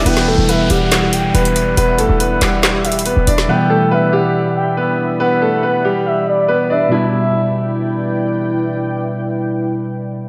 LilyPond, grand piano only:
\new Staff \with { instrumentName = "Grand piano" } { \time 4/4 \key e \minor \tempo 4 = 140 <b b'>8 <a a'>8 <b b'>8 <g g'>4. <b b'>4 | <b b'>8 <a a'>8 <b b'>8 <g g'>4. <b b'>8 <d' d''>8 | <b b'>8 <a a'>8 <b b'>8 <g g'>4. <b b'>4 | <b b'>8 <a a'>8 <b b'>8 <g g'>4. <b b'>8 <d' d''>8 |
e'2. r4 | r1 | }